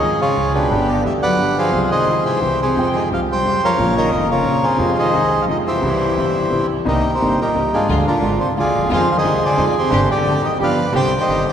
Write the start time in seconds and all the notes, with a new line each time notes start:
Already playing: D#3 G#4 D#5
0.00 G#1 G#2 F3 G#3 C#4 F4 G#4
0.04 G#4
0.20 C#3 F4 G#4 C#5
0.34 C#2 C#3 F3 G#3 C#4 F4 G#4
0.54 B2 D4 G4 B4
0.69 G1 G2 D3 G3 B3 D4 G4
0.88 D3 D5
1.03 D2 D3 E3 G3 B3 D4 G4 E5
1.07 G4
1.21 F#3 B4 D5 F#5
1.37 G1 G2 D3 G3 B3 D4 G4
1.41 G4
1.55 F3 G#4 C5 F5
1.70 C2 C3 F3 G#3 C4 G#4
1.74 F4 G#4
1.83 F3 F5
1.88 D#3 G#4 C5 D#5
2.05 C2 C3 F3 G#3 C4 F4 G#4
2.25 E3 G4 C5 E5
2.40 C2 C3 E3 G3 C4 E4 G4
2.60 C3 G4 G#4 C5
2.75 F2 F3 G#3 C4 F4 G5
2.79 G5
2.94 D#3 D#5
3.09 C2 C3 F3 G#3 C4 F4 G4
3.14 F5
3.29 G3 C5 G5
3.43 F2 F3 G#3 C4 F4 G4
3.62 F3 A#4 C#5 F5
3.76 A#1 A#2 C#3 F3 A#3 C#4 F4
3.81 F4
3.97 D#3 A#4 D#5
4.10 F1 F2 C#3 F3 A#3 C#4 F4
4.29 C#3 F4 A#4 C#5
4.43 A#1 A#2 C#3 F3 A#3 C#4 F4
4.63 C3 F4 G#4 C5
4.76 F2 C3 F3 G#3 C4 F4
4.81 F4
4.98 D#3 G#4 C5 D#5
5.13 C2 C3 F3 G#3 C4 F4
5.40 F3 F5
5.46 F2 C3 D#3 F3 G#3 C4 F4
5.50 F4 D#5
5.66 E3 G4 C5 E5
5.82 C2 C3 E3 G3 C4 E4
6.15 G1 G2 C3 E3 G3 C4 E4
6.20 E4
6.49 C2 C3 E3 G3 C4 E4
6.85 C2 C3 D#3 G3 A#3 C4 D#4 G4 A#4 D#5
7.13 C3 D#4 G4 C5
7.20 G1 G2 C3 G3 A#3 C4 D#4
7.38 A#2 D#4 G4 A#4
7.55 C2 C3 G3 A#3 C4 D#4
7.72 G#2 D4 F4 G#4
7.89 D2 D3 F3 G#3 D4 F4
8.07 A#2 D4 F4 A#4
8.22 G#1 G#2 D3 F3 G#3 D4 F4
8.40 C3 C5
8.56 D2 D3 F3 G#3 D4 F4 G#4 D5
8.60 F4
8.78 D2
8.82 D#2
8.86 E2 G#3
8.90 F2 D#3 F3 G#3 C4 D#4 F4 G#4 C5 F5
9.10 F3 F5
9.16 D#3 G#4 C5 D#5
9.24 C2 C3 D#3 G#3 C4 D#4 F4
9.42 D3 G#4 D5
9.57 F2 D#3 F3 G#3 C4 D#4 F4
9.75 C3 G4 C5
9.90 G1 G2 D3 G3 C4 D4 G4
10.09 D3 G4 D5
10.25 D2 D3 G3 C4 D4 G4
10.42 D#3 D#5
10.59 G1 G2 D3 F3 G3 B3 D4 G4 D5
10.63 B4 F5
10.92 C2 C3 D3 G3 C4 D4 G4 C5 D5 G5
11.20 D#3 G4 C5 D#5
11.28 G1 G2 D3 G3 C4 D4 G4
11.46 D3 G4 D5